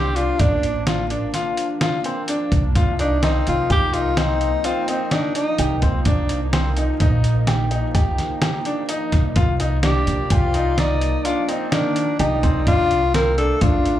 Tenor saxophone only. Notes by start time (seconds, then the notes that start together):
Already playing: G4
0.16 F4
0.40 D4
3.00 D4
3.24 D#4
3.48 F4
3.72 G4
3.93 F4
4.18 D#4
4.66 C4
4.90 C4
5.12 D4
5.35 D#4
9.85 G4
10.31 F4
10.79 D#4
11.25 D4
11.49 C4
11.72 D4
12.20 D#4
12.68 F4
13.15 A#4
13.38 A4
13.62 F4